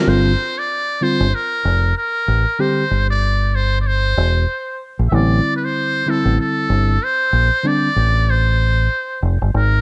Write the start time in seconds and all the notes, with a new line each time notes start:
0.07 G1 D3 G3 C4 F4 C5
0.59 D5
1.01 D3 G3 C4 F4 C5
1.20 G1
1.35 A#4
1.65 F1
1.97 A#4
2.28 A1
2.59 D3 G3 C4 G4 C5
2.91 G1
3.11 D5
3.55 C5
3.81 D5
3.87 C5
4.17 E1
4.99 A#1
5.08 A1 D3 G3 E5
5.12 B3 E4 D5
5.18 C4
5.56 B4
5.65 C5
6.06 D3 G3 C4 E4 A4
6.25 A1
6.41 A4
6.70 G1
7.04 C5
7.33 A#1
7.64 D3 G3 C4 D4 D5
7.96 A1
8.30 C5
9.23 F1
9.41 G1
9.54 G#1 A#4